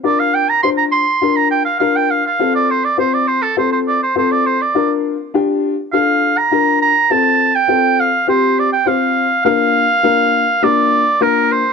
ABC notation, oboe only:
X:1
M:4/4
L:1/16
Q:1/4=102
K:Bb
V:1 name="Oboe"
d f g b c' b c'3 b g f f g f f- | f d c d c d c A c c d c c d c d- | d z6 z f3 b3 b2 | a3 g3 f2 c2 d g f4 |
f8 d4 B2 c2 |]